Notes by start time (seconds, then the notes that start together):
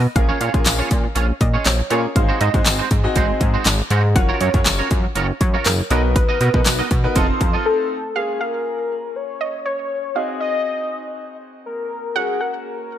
0.04 muted clean electric guitar stroke
0.16 A#1 A#3 C#4 F4 G#4 A#4 F5, muted clean electric guitar stroke, kick, closed hi-hat
0.29 C#4 F4 G#4 C#5
0.40 A#2 C#4 F4 G#4 C#5 F5, closed hi-hat
0.54 A#2 A#3 C#4 F4 G#4 A#4, muted clean electric guitar stroke, kick, closed hi-hat
0.66 A#1, muted clean electric guitar stroke, snare, clap, closed hi-hat, tambourine
0.79 C#4 F4 G#4 C#5
0.90 A#2, muted clean electric guitar stroke, kick, closed hi-hat
1.04 muted clean electric guitar stroke
1.15 A#1 C#4 F4 G#4 C#5, closed hi-hat
1.29 muted clean electric guitar stroke
1.41 A#2 D#5, muted clean electric guitar stroke, kick, closed hi-hat
1.54 C#4 F4 G#4 C#5
1.66 A#1 C#5, snare, clap, closed hi-hat, tambourine
1.79 muted clean electric guitar stroke
1.90 A#2 A#3 C#4 F4 G#4 A#4 C#5, closed hi-hat
2.04 muted clean electric guitar stroke
2.15 G#1 C4 D#4 F#4 G#4 C5 F5, muted clean electric guitar stroke, kick, closed hi-hat
2.29 G#3 D#4 F#4 C5
2.40 G#2 G#3 D#4 F#4 C5 D#5, closed hi-hat
2.54 G#2 C4 D#4 F#4 G#4 C5, kick, closed hi-hat
2.65 G#1, muted clean electric guitar stroke, snare, clap, closed hi-hat, tambourine
2.79 G#3 D#4 F#4 C5
2.91 G#2, kick, closed hi-hat
3.04 C4 D#4 F#4 G#4 D#5, muted clean electric guitar stroke
3.15 G#1 G#3 D#4 F#4 C5, kick, closed hi-hat
3.29 muted clean electric guitar stroke
3.41 G#2, muted clean electric guitar stroke, kick, closed hi-hat
3.54 G#3 D#4 F#4 C5
3.65 G#1, snare, clap, closed hi-hat, tambourine
3.79 muted clean electric guitar stroke
3.90 G#2 G#3 D#4 F#4 C5, closed hi-hat
4.04 muted clean electric guitar stroke
4.15 F#1 C#4 F4 F#4 A#4 C#5 F#5, muted clean electric guitar stroke, kick, closed hi-hat
4.29 C#4 F4 A#4 C#5
4.40 F#2 C#4 F4 A#4 C#5, closed hi-hat
4.54 F#2 C#4 F4 F#4 A#4 C#5, muted clean electric guitar stroke, kick, closed hi-hat
4.65 F#1, muted clean electric guitar stroke, snare, clap, closed hi-hat, tambourine
4.79 C#4 F4 A#4 C#5
4.91 F#2, kick, closed hi-hat
5.04 muted clean electric guitar stroke
5.15 F#1 C#4 F4 A#4 C#5, closed hi-hat
5.29 muted clean electric guitar stroke
5.41 F#2 C#5, muted clean electric guitar stroke, kick, closed hi-hat
5.54 C#4 F4 A#4 C#5
5.65 F#1 A#4, snare, clap, closed hi-hat, tambourine
5.79 muted clean electric guitar stroke
5.90 B1 B3 D#4 F#4 A#4 B4 D#5, closed hi-hat
6.04 muted clean electric guitar stroke
6.16 B4, muted clean electric guitar stroke, kick, closed hi-hat
6.29 B3 F#4 A#4 D#5
6.40 B2 B3 F#4 A#4 B4 D#5, closed hi-hat
6.54 B2 B3 D#4 F#4 A#4 B4, muted clean electric guitar stroke, kick
6.65 B1, muted clean electric guitar stroke, snare, clap, closed hi-hat, tambourine
6.79 B3 F#4 A#4 D#5
6.90 B2, muted clean electric guitar stroke, kick, closed hi-hat
7.04 B3 D#4 F#4 A#4 B4, muted clean electric guitar stroke
7.15 F1 C4 D#4 F4 A4 C5 D#5, kick, closed hi-hat
7.29 muted clean electric guitar stroke
7.40 F2, muted clean electric guitar stroke, kick, closed hi-hat
7.53 C4 F4 A4 D#5
7.66 A4
8.15 A#3 C#4 F4 G#4 F5
8.41 A#4 F5
9.16 C#5
9.41 D#5
9.66 C#5
10.15 C4 D#4 F#4 G#4 D#5 F5
10.40 D#5
11.66 A#4
12.15 C#4 F#4 G#4 A#4 F#5
12.41 A#4 F#5